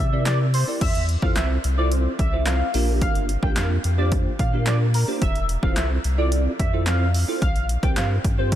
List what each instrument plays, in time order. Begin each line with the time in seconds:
0.00 sub bass C3, analog synth lead E5
0.12 tine electric piano C4 E4 G4 A#4 D5
0.26 analog synth lead D5, snare, clap, closed hi-hat
0.54 analog synth lead C5, open hi-hat
0.67 tine electric piano C4 E4 G4 A#4 D5
0.81 sub bass F2, analog synth lead E5, kick, closed hi-hat, crash
0.95 sub bass E2, closed hi-hat
1.09 closed hi-hat
1.22 sub bass F2, tine electric piano C4 E4 F4 A4 C5, analog synth lead F5, kick
1.36 sub bass C2, analog synth lead E5, snare, clap, closed hi-hat
1.64 sub bass C2, closed hi-hat
1.77 tine electric piano C4 E4 F4 A4 C5, analog synth lead D5
1.92 closed hi-hat
2.19 sub bass C2, analog synth lead E5, kick, closed hi-hat
2.32 tine electric piano C4 E4 F4 A4 C5
2.46 analog synth lead F5, snare, clap, closed hi-hat
2.74 sub bass A#1, tine electric piano A#3 D4 F4 G4 A#4, open hi-hat
3.01 analog synth lead F5, kick, closed hi-hat
3.15 sub bass G1, closed hi-hat
3.29 closed hi-hat
3.43 sub bass A#1, tine electric piano A#3 D4 F4 G4 A#4, analog synth lead G5, kick
3.56 sub bass F2, analog synth lead F5, snare, clap, closed hi-hat
3.84 sub bass F2, closed hi-hat
3.98 tine electric piano A#3 D4 F4 G4 C5, analog synth lead D5
4.12 kick, closed hi-hat
4.39 sub bass A#2, analog synth lead F5, kick, closed hi-hat
4.53 tine electric piano A#3 D4 F4 G4 A#4
4.66 analog synth lead D5, snare, clap, closed hi-hat
4.94 analog synth lead A#4, open hi-hat
5.08 tine electric piano A#3 D4 F4 G4 C5
5.22 sub bass F1, analog synth lead E5, kick, closed hi-hat
5.36 sub bass E1, closed hi-hat
5.49 closed hi-hat
5.63 sub bass F1, tine electric piano C4 E4 F4 A4 C5, analog synth lead F5, kick
5.76 sub bass C2, analog synth lead E5, snare, clap, closed hi-hat
6.04 sub bass C2, closed hi-hat
6.18 tine electric piano C4 E4 F4 A4 D5, analog synth lead D5
6.32 closed hi-hat
6.59 sub bass F2, analog synth lead E5, kick, closed hi-hat
6.73 tine electric piano C4 E4 F4 A4 C5
6.86 analog synth lead F5, snare, clap, closed hi-hat
7.14 open hi-hat
7.28 tine electric piano C4 E4 F4 A4 C5
7.42 sub bass C2, analog synth lead F5, kick, closed hi-hat
7.56 sub bass A#1, closed hi-hat
7.69 closed hi-hat
7.83 sub bass C2, tine electric piano C4 F4 G4 A#4 C5, analog synth lead G5, kick, closed hi-hat
7.96 sub bass G2, analog synth lead F5, snare, clap, closed hi-hat
8.24 sub bass G2, kick, closed hi-hat
8.38 tine electric piano C4 F4 G4 A#4 C5, analog synth lead C5
8.52 kick, closed hi-hat